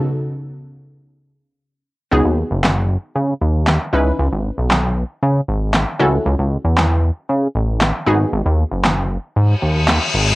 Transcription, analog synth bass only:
\new Staff \with { instrumentName = "Analog synth bass" } { \clef bass \time 4/4 \key gis \phrygian \tempo 4 = 116 r1 | cis,16 dis,8 fis,,4~ fis,,16 cis8 dis,4 cis,8 | cis,16 gis,,8 b,,4~ b,,16 cis8 gis,,4 cis,8 | cis,16 cis,8 e,4~ e,16 cis8 a,,4 gis,,8 |
gis,,16 dis,8 fis,,4~ fis,,16 gis,8 dis,4 gis,,8 | }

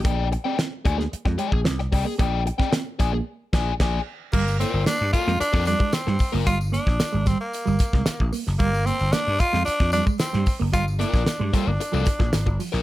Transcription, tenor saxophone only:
\new Staff \with { instrumentName = "Tenor saxophone" } { \time 4/4 \key g \minor \tempo 4 = 112 r1 | r1 | bes8 c'8 d'8 f'8 d'8 d'8 c'8. r16 | f'8 d'4 c'16 bes4.~ bes16 r8 |
bes8 c'8 d'8 f'8 d'8 d'8 c'8. r16 | f'8 d'4 c'16 d'4.~ d'16 r8 | }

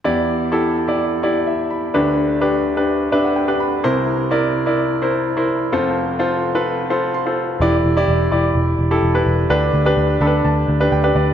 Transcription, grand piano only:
<<
  \new Staff \with { instrumentName = "Grand piano" } { \time 4/4 \key e \minor \tempo 4 = 127 << { r2. e''8 b''8~ | b''8 r2 e''16 fis''16 g''8 b''8 | r1 | r2. c'''4 |
r1 | r4. b''8 a''4 g''8 d''8 | } \\ { <e' g' d''>4 <e' g' a'>8. <e' g' d''>8. <e' g' d''>8. r8. | <d' g' b'>4 <d' g' b'>8. <d' g' b'>8. <d' g' b'>8. <d' g' b'>8. | <e' bes' c''>4 <e' bes' d''>8. <e' bes' d''>8. <e' bes' c''>8. <e' bes' c''>8. | <f' a' c''>4 <f' a' c''>8. <f' a' b'>8. <f' a' c''>8. <f' a' c''>8. |
<e' g' d''>8. <e' g' d''>8. <e' g' d''>4~ <e' g' d''>16 <e' g' a'>8 <e' g' b'>8. | <d' g' b'>8. <d' g' b'>8. <d' g' a' b'>4~ <d' g' a' b'>16 <d' g' b'>8 <d' g' b'>8. | } >> }
  \new Staff \with { instrumentName = "Grand piano" } { \clef bass \time 4/4 \key e \minor <e, e>1 | <d, d>1 | <c, c>1 | <f,, f,>1 |
e4. r2 r8 | d4. r2 r8 | }
>>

